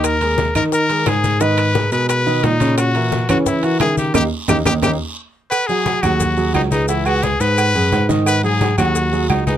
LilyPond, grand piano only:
\new Staff \with { instrumentName = "Grand piano" } { \time 4/4 \key gis \minor \tempo 4 = 175 <dis dis' dis''>8 <gis gis' ais'>4 <dis dis' dis''>4 <gis gis' ais'>8 <gis gis' ais'>4 | <dis dis' dis''>4 <gis gis' ais'>8 <gis gis' ais'>4 <dis dis' dis''>4 <cis cis' cis''>8~ | <cis cis' cis''>8 <e e' ais'>4 <cis cis' cis''>4 <e e' ais'>8 <cis ais' e''>4 | <ais dis' g'>8 r8 <ais dis' g'>8 <ais dis' g'>8 <ais dis' g'>8 r4. |
r8 <fis fis' gis'>4 <fis fis' gis'>4 <fis fis' gis'>4 <gis gis' b'>8 | <e e' e''>8 <gis gis' b'>4 <gis gis' b'>4 <gis gis' b'>4 <dis dis' dis''>8~ | <dis dis' dis''>8 <fis fis' gis'>4 <fis fis' gis'>4 <fis fis' gis'>4 <gis gis' b'>8 | }